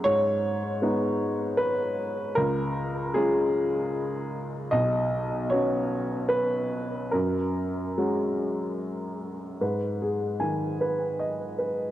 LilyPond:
<<
  \new Staff \with { instrumentName = "Upright piano" } { \time 3/4 \key gis \dorian \tempo 4 = 76 cis''2 b'4 | ais'4 gis'4. r8 | dis''4 cis''4 b'4 | ais'2~ ais'8 r8 |
b'8 gis'8 gis''8 b'8 dis''8 b'8 | }
  \new Staff \with { instrumentName = "Upright piano" } { \time 3/4 \key gis \dorian gis,4 <gis b dis'>2 | cis,4 <gis cis' eis'>2 | b,,4 <b cis' fis'>2 | fis,4 <gis cis' fis'>2 |
gis,4 dis2 | }
>>